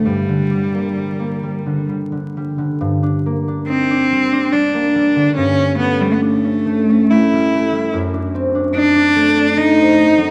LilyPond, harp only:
\new Staff \with { instrumentName = "Harp" } { \time 3/4 \key g \minor \tempo 4 = 71 g,16 d16 g16 bes16 g16 bes16 g16 d16 g16 d16 g16 d16 | g,16 d'16 bes16 d'16 ees'16 d'16 g16 d'16 g16 bes16 g16 d16 | g,16 cis'16 a16 cis'16 d'16 cis'16 a16 cis'16 a16 g16 a16 g16 | fis,16 d'16 c'16 d'16 ees'16 d'16 a16 d'16 a16 c'16 a16 fis16 | }